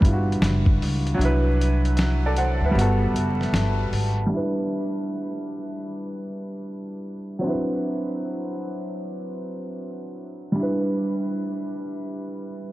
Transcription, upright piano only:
0.00 1.21 G3 medium
0.00 0.02 D4 medium
0.00 1.16 D4 soft
0.00 0.04 E4 medium
0.00 1.22 B4 medium
0.04 1.20 E4 soft
0.04 0.13 F4 soft
0.13 1.25 F#4 medium
1.14 2.70 F#3 medium
1.14 2.71 D4 medium
1.21 2.73 E4 medium
1.21 1.99 B4 medium
2.26 2.38 A4 medium
2.26 2.38 D5 medium
2.38 2.61 C5 medium
2.38 2.61 F#5 medium
2.65 3.01 B4 medium
2.65 3.00 E5 medium
2.71 4.25 G3 medium
2.71 4.28 B3 medium
2.78 4.30 F#4 medium
2.78 4.31 A4 medium
4.27 7.37 G3 medium
4.27 7.38 D4 medium
4.34 7.40 E4 medium
4.34 7.42 B4 medium
7.39 10.49 F#3 medium
7.39 10.50 C4 medium
7.44 10.51 D4 medium
7.44 10.52 E4 medium
7.49 10.54 B4 medium
10.52 12.72 G3 medium
10.52 12.72 D4 medium
10.59 12.72 E4 medium
10.59 12.50 B4 medium

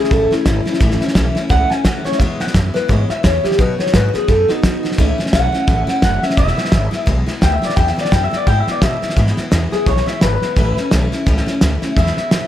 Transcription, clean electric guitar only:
0.00 0.11 G#4 loud
0.12 0.32 A4 medium
0.32 0.96 E4 loud
1.50 1.70 F#5 loud
1.70 1.85 G#5 medium
1.85 2.05 F#5 medium
2.05 2.19 C#5 medium
2.19 2.41 E5 medium
2.41 2.55 F#5 loud
2.55 2.75 E5 medium
2.74 2.90 B4 loud
2.90 3.10 C#5 loud
3.10 3.24 E5 medium
3.24 3.44 C#5 loud
3.44 3.59 G4 medium
3.60 3.79 B4 medium
3.79 3.93 C#5 medium
3.94 4.14 B4 medium
4.14 4.28 G#4 medium
4.29 4.49 A4 loud
4.49 5.13 D#4 medium
5.33 6.01 F#5 loud
6.03 6.23 F#5 medium
6.23 6.37 E5 medium
6.38 7.06 E5 loud
7.43 7.53 G5 loud
7.54 7.65 E5 medium
7.65 7.76 D5 medium
7.76 7.88 G5 loud
7.88 8.00 E5 medium
8.01 8.12 D5 loud
8.12 8.23 G5 medium
8.24 8.35 E5 loud
8.36 8.47 D5 loud
8.47 8.59 G5 loud
8.60 8.71 E5 medium
8.71 8.82 D5 medium
8.83 9.16 E5 medium
9.73 9.87 G#4 loud
9.87 10.07 C#5 loud
10.08 10.22 E5 medium
10.22 10.90 B4 medium
11.98 12.47 E5 loud

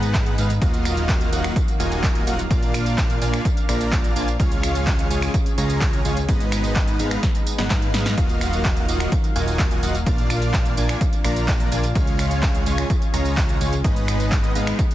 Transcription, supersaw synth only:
0.00 0.35 G#3 loud
0.00 0.35 B3 medium
0.00 0.35 D#4 medium
0.00 0.35 B4 medium
0.00 0.35 F#5 loud
0.38 0.51 G#3 loud
0.38 0.51 B3 medium
0.38 0.51 D#4 medium
0.38 0.51 B4 medium
0.38 0.51 F5 loud
0.62 1.30 A#3 loud
0.62 1.30 F4 medium
0.62 1.30 F#4 medium
0.62 1.30 D#5 medium
0.62 1.30 F5 loud
1.33 1.53 A#3 loud
1.33 1.53 F4 medium
1.33 1.53 F#4 medium
1.33 1.53 D#5 medium
1.33 1.53 F#5 loud
1.80 2.24 A#3 loud
1.80 2.24 F4 medium
1.80 2.24 F#4 medium
1.80 2.24 D#5 medium
1.80 2.24 G#5 loud
2.27 2.40 A#3 medium
2.27 2.40 F4 medium
2.27 2.40 F#4 medium
2.27 2.40 D#5 medium
2.27 2.40 F#5 loud
2.51 3.19 A#3 medium
2.51 3.19 D4 medium
2.51 3.19 F4 medium
2.51 3.19 D5 medium
2.51 3.19 F5 loud
3.22 3.42 A#3 medium
3.22 3.42 D4 medium
3.22 3.42 F4 medium
3.22 3.42 D5 medium
3.22 3.42 G#5 loud
3.69 4.13 A#3 loud
3.69 4.13 D4 medium
3.69 4.13 F4 medium
3.69 4.13 D5 medium
3.69 4.13 A#5 loud
4.16 4.29 A#3 medium
4.16 4.29 D4 medium
4.16 4.29 F4 medium
4.16 4.29 D5 medium
4.16 4.29 G#5 loud
4.40 5.08 G#3 medium
4.40 5.08 C#4 medium
4.40 5.08 F4 medium
4.40 5.08 C#5 medium
4.40 5.08 F5 loud
5.11 5.31 G#3 loud
5.11 5.31 C#4 medium
5.11 5.31 F4 medium
5.11 5.31 C#5 medium
5.11 5.31 G#5 loud
5.58 6.02 G#3 loud
5.58 6.02 C#4 medium
5.58 6.02 F4 medium
5.58 6.02 C#5 medium
5.58 6.02 A#5 loud
6.05 6.18 G#3 loud
6.05 6.18 C#4 medium
6.05 6.18 F4 medium
6.05 6.18 C#5 medium
6.05 6.18 G#5 loud
6.29 6.97 G#3 medium
6.29 6.97 B3 medium
6.29 6.97 D#4 medium
6.29 6.97 B4 medium
6.29 6.97 D#5 loud
6.99 7.20 G#3 medium
6.99 7.20 B3 medium
6.99 7.20 D#4 medium
6.99 7.20 B4 medium
6.99 7.20 F5 loud
7.58 7.68 G#3 medium
7.58 7.68 B3 medium
7.58 7.68 D#4 medium
7.58 7.68 B4 medium
7.58 7.68 F#5 medium
7.70 7.91 G#3 medium
7.70 7.91 B3 medium
7.70 7.91 D#4 medium
7.70 7.91 B4 medium
7.70 7.91 F5 medium
7.94 8.14 G#3 medium
7.94 8.14 B3 medium
7.94 8.14 D#4 medium
7.94 8.14 B4 medium
7.94 8.14 F5 medium
8.18 8.86 A#3 medium
8.18 8.86 F4 medium
8.18 8.86 F#4 medium
8.18 8.86 D#5 medium
8.18 8.86 F5 loud
8.88 9.09 A#3 loud
8.88 9.09 F4 medium
8.88 9.09 F#4 medium
8.88 9.09 D#5 medium
8.88 9.09 F#5 loud
9.36 9.80 A#3 loud
9.36 9.80 F4 medium
9.36 9.80 F#4 medium
9.36 9.80 D#5 medium
9.36 9.80 G#5 loud
9.83 9.96 A#3 medium
9.83 9.96 F4 medium
9.83 9.96 F#4 medium
9.83 9.96 D#5 medium
9.83 9.96 F#5 loud
10.07 10.75 A#3 loud
10.07 10.75 D4 medium
10.07 10.75 F4 medium
10.07 10.75 D5 medium
10.07 10.75 F5 loud
10.77 10.98 A#3 loud
10.77 10.98 D4 medium
10.77 10.98 F4 medium
10.77 10.98 D5 medium
10.77 10.98 G#5 loud
11.25 11.69 A#3 loud
11.25 11.69 D4 medium
11.25 11.69 F4 medium
11.25 11.69 D5 medium
11.25 11.69 A#5 loud
11.72 11.85 A#3 medium
11.72 11.85 D4 medium
11.72 11.85 F4 medium
11.72 11.85 D5 medium
11.72 11.85 G#5 loud
11.96 12.64 G#3 medium
11.96 12.64 C#4 medium
11.96 12.64 F4 medium
11.96 12.64 C#5 medium
11.96 12.64 F5 loud
12.66 12.87 G#3 medium
12.66 12.87 C#4 medium
12.66 12.87 F4 medium
12.66 12.87 C#5 medium
12.66 12.87 G#5 loud
13.14 13.58 G#3 loud
13.14 13.58 C#4 medium
13.14 13.58 F4 medium
13.14 13.58 C#5 medium
13.14 13.58 A#5 loud
13.61 13.74 G#3 loud
13.61 13.74 C#4 medium
13.61 13.74 F4 medium
13.61 13.74 C#5 medium
13.61 13.74 G#5 loud
13.85 14.53 G#3 medium
13.85 14.53 B3 medium
13.85 14.53 D#4 medium
13.85 14.53 B4 medium
13.85 14.53 D#5 loud
14.55 14.76 G#3 loud
14.55 14.76 B3 medium
14.55 14.76 D#4 medium
14.55 14.76 B4 medium
14.55 14.76 F5 loud

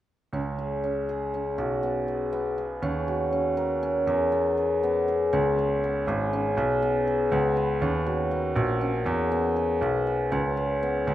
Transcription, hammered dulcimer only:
0.33 0.83 C#4 medium
0.59 1.09 G#4 soft
0.84 1.34 C#4 soft
1.09 2.08 G#4 soft
1.34 2.82 C#4 soft
1.58 3.07 F#4 medium
1.83 2.32 B3 soft
2.08 2.57 G#4 soft
2.33 3.63 B3 medium
2.58 4.07 G#4 soft
2.83 3.32 C#4 medium
3.08 6.33 F#4 medium
3.32 3.82 C#4 soft
3.57 4.38 A#4 medium
3.83 5.32 C#4 medium
4.07 4.57 G#4 medium
4.32 4.83 B3 medium
4.57 5.08 G#4 soft
4.83 5.83 B3 medium
5.08 5.58 G#4 medium
5.33 6.33 C#4 medium
5.59 6.08 G#4 soft
5.84 6.82 B3 medium
6.08 6.57 G#4 medium
6.33 7.81 C#4 medium
6.58 7.07 G#4 medium
6.82 7.32 B3 soft
7.07 9.06 G#4 soft
7.32 8.37 B3 medium
7.57 8.37 B4 medium
7.82 8.81 C#4 medium
8.06 8.56 F#4 medium
8.31 9.38 A#3 medium
8.56 11.14 F#4 medium
8.81 10.31 C#4 medium
9.06 9.56 G#4 medium
9.32 9.82 B3 medium
9.56 10.57 G#4 soft
9.82 10.82 B3 medium
10.07 11.14 B4 soft
10.32 11.14 C#4 medium
10.57 11.07 G#4 medium
10.83 11.14 B3 medium
11.07 11.14 G#4 medium

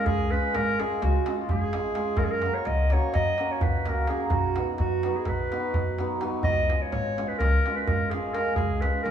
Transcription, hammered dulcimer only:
0.00 0.30 G#3 medium
0.31 0.78 G#3 medium
0.31 0.50 C#4 medium
0.31 0.50 F4 soft
0.31 0.50 G#4 medium
0.79 1.25 G#3 medium
0.79 0.98 C#4 medium
0.79 0.98 F4 medium
0.79 0.98 G#4 medium
1.27 1.72 G#3 medium
1.27 1.46 C#4 medium
1.27 1.46 F4 medium
1.27 1.46 G#4 medium
1.73 1.95 G#3 medium
1.73 1.92 C#4 medium
1.73 1.92 F4 medium
1.73 1.92 G#4 medium
1.96 2.23 G#3 medium
1.96 2.14 C#4 medium
1.96 2.14 F4 medium
1.96 2.15 G#4 medium
2.44 2.90 F#3 medium
2.44 2.63 A#3 medium
2.44 2.63 C#4 soft
2.44 2.63 F#4 medium
2.91 3.37 F#3 medium
2.91 3.10 A#3 medium
2.91 3.10 C#4 medium
2.91 3.11 F#4 medium
3.38 3.85 F#3 medium
3.38 3.58 A#3 medium
3.38 3.58 C#4 medium
3.38 3.58 F#4 medium
3.86 4.08 F#3 medium
3.86 4.05 A#3 medium
3.86 4.05 C#4 medium
3.86 4.06 F#4 medium
4.09 4.36 F#3 medium
4.09 4.27 A#3 medium
4.09 4.27 C#4 medium
4.09 4.27 F#4 medium
4.56 5.02 F#3 soft
4.56 4.75 B3 soft
4.56 4.75 D#4 soft
4.56 4.75 F#4 medium
5.04 5.50 F#3 medium
5.04 5.23 B3 medium
5.04 5.23 D#4 medium
5.04 5.24 F#4 medium
5.52 5.98 F#3 medium
5.52 5.71 B3 medium
5.52 5.71 D#4 medium
5.52 5.71 F#4 medium
5.99 6.20 F#3 medium
5.99 6.17 B3 medium
5.99 6.18 D#4 medium
5.99 6.18 F#4 medium
6.21 6.49 F#3 medium
6.21 6.40 B3 medium
6.21 6.40 D#4 medium
6.21 6.40 F#4 medium
6.68 7.16 G#3 medium
6.68 6.88 C#4 soft
6.68 6.88 F4 soft
6.68 6.88 G#4 medium
7.18 7.65 G#3 medium
7.18 7.37 C#4 medium
7.18 7.37 F4 medium
7.18 7.37 G#4 medium
7.66 8.12 G#3 medium
7.66 7.85 C#4 medium
7.66 7.85 F4 medium
7.66 7.86 G#4 medium
8.13 8.33 G#3 medium
8.13 8.31 C#4 medium
8.13 8.31 F4 medium
8.13 8.32 G#4 medium
8.34 8.82 G#3 medium
8.34 8.53 C#4 medium
8.34 8.54 F4 medium
8.34 8.54 G#4 medium
8.83 9.11 G#3 medium
8.83 9.02 C#4 medium
8.83 9.02 F4 soft
8.83 9.02 G#4 medium

